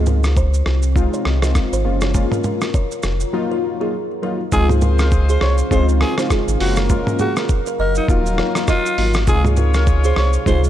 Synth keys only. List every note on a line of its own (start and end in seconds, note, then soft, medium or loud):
0.00 0.32 G#3 medium
0.00 0.32 C4 medium
0.00 0.33 D#4 medium
0.00 0.33 F4 loud
0.96 1.38 G#3 medium
0.96 1.39 C4 medium
0.96 1.39 D#4 medium
0.96 1.39 F4 loud
1.43 1.82 G#3 medium
1.43 1.82 C4 medium
1.43 1.82 D#4 medium
1.43 1.82 F4 medium
1.85 2.12 G#3 medium
1.85 2.13 A#3 medium
1.85 2.13 C#4 medium
1.85 2.13 F4 medium
2.14 2.70 G#3 medium
2.14 2.70 A#3 medium
2.14 2.70 C#4 medium
2.14 2.70 F4 loud
3.33 3.76 F#3 medium
3.33 3.76 A#3 medium
3.33 3.76 D#4 medium
3.33 3.76 F4 loud
3.80 3.94 F#3 medium
3.80 3.94 A#3 medium
3.80 3.94 D#4 medium
3.80 3.94 F4 medium
4.22 4.40 F#3 medium
4.22 4.40 A#3 medium
4.22 4.41 D#4 medium
4.22 4.41 F4 medium
4.52 5.08 G#3 medium
4.52 5.08 C4 medium
4.52 5.08 D#4 medium
4.52 5.08 F4 loud
5.71 6.14 G#3 medium
5.71 6.14 C4 medium
5.71 6.14 D#4 medium
5.71 6.14 F4 loud
6.18 6.57 G#3 medium
6.18 6.57 C4 medium
6.18 6.57 D#4 medium
6.18 6.57 F4 medium
6.60 6.88 G#3 medium
6.60 6.88 A#3 medium
6.60 6.88 C#4 medium
6.60 6.88 F4 medium
6.90 7.45 G#3 medium
6.90 7.45 A#3 medium
6.90 7.45 C#4 medium
6.90 7.45 F4 loud
8.08 8.51 F#3 loud
8.08 8.51 A#3 medium
8.08 8.52 D#4 medium
8.08 8.52 F4 loud
8.55 8.69 F#3 medium
8.55 8.69 A#3 medium
8.55 8.69 D#4 medium
8.55 8.69 F4 medium
8.97 9.16 F#3 medium
8.97 9.16 A#3 medium
8.97 9.16 D#4 medium
8.97 9.16 F4 medium
9.27 9.83 C3 medium
9.27 9.83 G#3 medium
9.27 9.83 D#4 medium
9.27 9.83 F4 loud
10.46 10.70 C3 medium
10.46 10.70 G#3 loud
10.46 10.70 D#4 medium
10.46 10.70 F4 loud